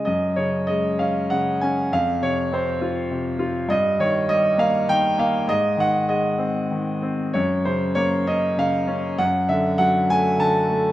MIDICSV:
0, 0, Header, 1, 2, 480
1, 0, Start_track
1, 0, Tempo, 622407
1, 44, Time_signature, 3, 2, 24, 8
1, 1484, Tempo, 596421
1, 4844, Tempo, 621762
1, 6764, Tempo, 600601
1, 8631, End_track
2, 0, Start_track
2, 0, Title_t, "Grand piano"
2, 0, Program_c, 0, 0
2, 0, Control_c, 0, 64, 127
2, 38, Note_on_c, 0, 75, 67
2, 54, Note_on_c, 0, 42, 51
2, 55, Control_c, 0, 64, 0
2, 203, Control_c, 0, 64, 127
2, 279, Note_on_c, 0, 73, 57
2, 285, Note_on_c, 0, 49, 42
2, 289, Note_off_c, 0, 75, 0
2, 516, Note_on_c, 0, 75, 66
2, 529, Note_on_c, 0, 56, 43
2, 530, Note_off_c, 0, 73, 0
2, 764, Note_on_c, 0, 77, 66
2, 769, Note_off_c, 0, 75, 0
2, 771, Note_on_c, 0, 61, 42
2, 989, Note_off_c, 0, 77, 0
2, 1003, Note_on_c, 0, 78, 74
2, 1005, Note_off_c, 0, 49, 0
2, 1017, Note_on_c, 0, 49, 44
2, 1243, Note_off_c, 0, 61, 0
2, 1244, Note_on_c, 0, 80, 69
2, 1252, Note_off_c, 0, 78, 0
2, 1255, Note_on_c, 0, 61, 49
2, 1457, Note_off_c, 0, 56, 0
2, 1458, Note_off_c, 0, 42, 0
2, 1474, Note_off_c, 0, 49, 0
2, 1481, Note_off_c, 0, 61, 0
2, 1482, Note_on_c, 0, 41, 59
2, 1488, Note_on_c, 0, 77, 80
2, 1490, Note_off_c, 0, 80, 0
2, 1493, Control_c, 0, 64, 0
2, 1628, Control_c, 0, 64, 127
2, 1722, Note_on_c, 0, 48, 46
2, 1727, Note_on_c, 0, 73, 73
2, 1738, Note_off_c, 0, 77, 0
2, 1965, Note_on_c, 0, 60, 46
2, 1976, Note_off_c, 0, 73, 0
2, 1976, Note_on_c, 0, 72, 63
2, 2201, Note_on_c, 0, 65, 45
2, 2426, Note_off_c, 0, 48, 0
2, 2438, Note_on_c, 0, 48, 43
2, 2650, Note_off_c, 0, 72, 0
2, 2652, Note_off_c, 0, 65, 0
2, 2664, Note_on_c, 0, 65, 55
2, 2885, Note_off_c, 0, 41, 0
2, 2887, Note_off_c, 0, 60, 0
2, 2901, Note_off_c, 0, 48, 0
2, 2902, Note_on_c, 0, 43, 66
2, 2903, Note_off_c, 0, 65, 0
2, 2912, Note_on_c, 0, 75, 83
2, 2928, Control_c, 0, 64, 0
2, 3072, Control_c, 0, 64, 127
2, 3148, Note_on_c, 0, 51, 43
2, 3155, Note_on_c, 0, 73, 75
2, 3163, Note_off_c, 0, 75, 0
2, 3384, Note_on_c, 0, 55, 51
2, 3388, Note_on_c, 0, 75, 82
2, 3404, Note_off_c, 0, 73, 0
2, 3619, Note_on_c, 0, 58, 46
2, 3631, Note_on_c, 0, 77, 85
2, 3640, Note_off_c, 0, 75, 0
2, 3849, Note_off_c, 0, 51, 0
2, 3862, Note_on_c, 0, 51, 39
2, 3872, Note_on_c, 0, 79, 93
2, 3881, Note_off_c, 0, 77, 0
2, 4092, Note_off_c, 0, 58, 0
2, 4105, Note_on_c, 0, 58, 54
2, 4115, Note_on_c, 0, 77, 69
2, 4121, Note_off_c, 0, 79, 0
2, 4318, Note_off_c, 0, 43, 0
2, 4321, Note_off_c, 0, 55, 0
2, 4335, Note_off_c, 0, 51, 0
2, 4341, Note_on_c, 0, 44, 60
2, 4344, Note_off_c, 0, 58, 0
2, 4352, Note_on_c, 0, 75, 87
2, 4364, Note_off_c, 0, 77, 0
2, 4367, Control_c, 0, 64, 0
2, 4513, Control_c, 0, 64, 127
2, 4580, Note_off_c, 0, 75, 0
2, 4581, Note_on_c, 0, 51, 46
2, 4605, Note_on_c, 0, 78, 80
2, 4831, Note_on_c, 0, 56, 45
2, 4835, Note_on_c, 0, 75, 63
2, 4853, Note_off_c, 0, 78, 0
2, 5061, Note_on_c, 0, 60, 46
2, 5304, Note_off_c, 0, 51, 0
2, 5315, Note_on_c, 0, 51, 39
2, 5533, Note_off_c, 0, 75, 0
2, 5545, Note_off_c, 0, 60, 0
2, 5557, Note_on_c, 0, 60, 45
2, 5772, Note_off_c, 0, 44, 0
2, 5775, Note_off_c, 0, 56, 0
2, 5792, Note_off_c, 0, 51, 0
2, 5798, Note_off_c, 0, 60, 0
2, 5798, Note_on_c, 0, 73, 66
2, 5810, Note_on_c, 0, 42, 61
2, 5819, Control_c, 0, 64, 0
2, 5953, Control_c, 0, 64, 127
2, 6043, Note_on_c, 0, 72, 62
2, 6050, Note_on_c, 0, 49, 41
2, 6052, Note_off_c, 0, 73, 0
2, 6268, Note_off_c, 0, 72, 0
2, 6272, Note_on_c, 0, 73, 78
2, 6279, Note_on_c, 0, 58, 43
2, 6499, Note_off_c, 0, 73, 0
2, 6520, Note_on_c, 0, 61, 44
2, 6522, Note_on_c, 0, 75, 73
2, 6745, Note_off_c, 0, 49, 0
2, 6757, Note_on_c, 0, 49, 40
2, 6765, Note_on_c, 0, 77, 80
2, 6768, Note_off_c, 0, 75, 0
2, 6981, Note_off_c, 0, 61, 0
2, 6991, Note_off_c, 0, 77, 0
2, 6993, Note_on_c, 0, 61, 54
2, 7215, Note_off_c, 0, 58, 0
2, 7217, Note_off_c, 0, 42, 0
2, 7232, Note_off_c, 0, 49, 0
2, 7235, Note_off_c, 0, 61, 0
2, 7242, Note_on_c, 0, 78, 77
2, 7244, Note_on_c, 0, 42, 61
2, 7260, Control_c, 0, 64, 0
2, 7396, Control_c, 0, 64, 127
2, 7484, Note_on_c, 0, 76, 77
2, 7488, Note_on_c, 0, 50, 49
2, 7494, Note_off_c, 0, 78, 0
2, 7710, Note_off_c, 0, 76, 0
2, 7718, Note_on_c, 0, 78, 81
2, 7723, Note_on_c, 0, 54, 50
2, 7970, Note_off_c, 0, 78, 0
2, 7970, Note_on_c, 0, 57, 49
2, 7975, Note_on_c, 0, 80, 84
2, 8187, Note_off_c, 0, 50, 0
2, 8199, Note_on_c, 0, 50, 50
2, 8212, Note_on_c, 0, 81, 86
2, 8217, Note_off_c, 0, 80, 0
2, 8428, Note_off_c, 0, 57, 0
2, 8431, Note_off_c, 0, 81, 0
2, 8440, Note_on_c, 0, 57, 58
2, 8631, Note_off_c, 0, 42, 0
2, 8631, Note_off_c, 0, 50, 0
2, 8631, Note_off_c, 0, 54, 0
2, 8631, Note_off_c, 0, 57, 0
2, 8631, End_track
0, 0, End_of_file